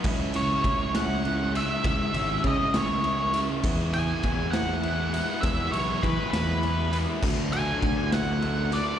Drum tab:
CC |x-----|------|x-----|------|
RD |-xxxxx|xxxxxx|-xxxxx|xxxxxx|
SD |---o--|---o--|---o--|---o--|
BD |o-o---|o-o---|o-o---|o-o---|

CC |x-----|
RD |-xxxxx|
SD |---o--|
BD |o-o---|